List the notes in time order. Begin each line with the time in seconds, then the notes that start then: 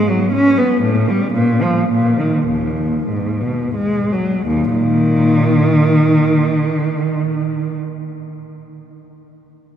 0.09 F#3
0.32 C#4
0.58 B3
0.82 A2
1.10 G3
1.34 A#2
1.62 F3
1.90 A#2
2.20 D#3
2.46 D#2
3.08 G#2
3.41 B2
3.75 G#3
4.12 F#3
4.47 D#2
4.70 A#2 D#3